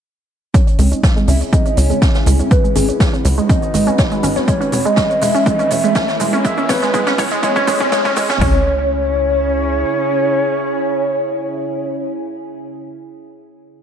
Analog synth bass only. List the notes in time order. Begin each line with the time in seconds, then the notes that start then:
0.79 C#2
1.28 C#2
1.77 C#2
2.26 C#2
2.76 G#1
3.25 C#2
3.74 G#1
4.23 G#1
4.72 E1
5.22 E1
5.71 E1
6.20 E1
6.69 A1
7.18 C#2
7.68 A1
8.17 A1
8.41 C#2